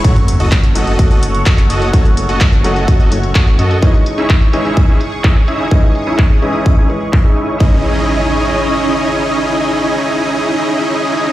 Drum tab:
HH |xxxxxxxxxxxxxxxx|xxxxxxxxxxxxxxxx|xxxxxxxxxxxxxxxx|xxxxxxxxxxxx-xxx|
CP |----x-------xx--|----x-------x---|----x-------xx--|----x-------x---|
BD |o---o---o---o---|o---o---o---o---|o---o---o---o---|o---o---o---o---|

HH |----------------|----------------|
CP |----------------|----------------|
BD |o---------------|----------------|